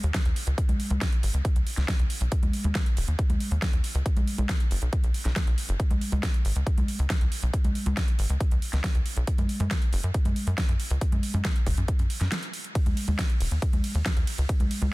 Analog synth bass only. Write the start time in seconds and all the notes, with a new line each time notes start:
0.04 D#2
0.25 D#2
0.47 C#2
0.69 C#2
0.90 C#2
1.23 G#1
1.34 C#2
1.56 C#2
1.77 C#2
1.99 C#2
2.21 B1
2.43 D#2
2.65 D#2
2.97 D#1
3.08 D#2
3.30 D#2
3.51 D#2
3.73 D#2
3.95 C#2
4.17 B1
4.38 B1
4.71 F#1
4.82 B1
5.04 B1
5.25 B1
5.47 B1
5.69 F#1
5.91 C#2
6.12 C#2
6.45 G#1
6.56 C#2
6.78 C#2
6.99 C#2
7.21 C#2
7.43 B1
7.64 C#2
7.86 C#2
8.19 G#1
8.30 C#2
8.51 C#2
8.73 C#2
8.95 C#2
9.17 B1
9.39 F#2
9.60 F#2
9.93 F#1
10.04 F#2
10.25 F#2
10.47 F#2
10.69 F#2
10.91 C#2
11.12 F#2
11.34 F#2
11.67 F#1
11.78 F#2
11.99 F#2
12.21 F#2
12.86 D#2
13.08 D#2
13.40 D#1
13.51 D#2
13.73 D#2
13.95 D#2
14.17 D#2
14.38 C#2
14.60 C#2
14.82 C#2